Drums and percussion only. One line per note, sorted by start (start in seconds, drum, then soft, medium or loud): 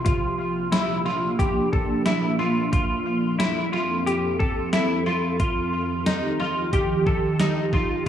0.06 kick loud
0.06 closed hi-hat medium
0.72 snare medium
0.72 closed hi-hat medium
1.39 kick medium
1.39 closed hi-hat medium
1.73 kick medium
2.06 snare medium
2.06 closed hi-hat medium
2.73 kick loud
2.73 closed hi-hat medium
3.40 snare medium
3.40 closed hi-hat medium
4.07 closed hi-hat medium
4.40 kick medium
4.73 snare medium
4.73 closed hi-hat medium
5.40 kick loud
5.40 closed hi-hat medium
6.06 snare medium
6.06 closed hi-hat medium
6.73 kick medium
6.73 closed hi-hat medium
7.07 kick medium
7.40 snare medium
7.40 closed hi-hat medium
7.73 kick medium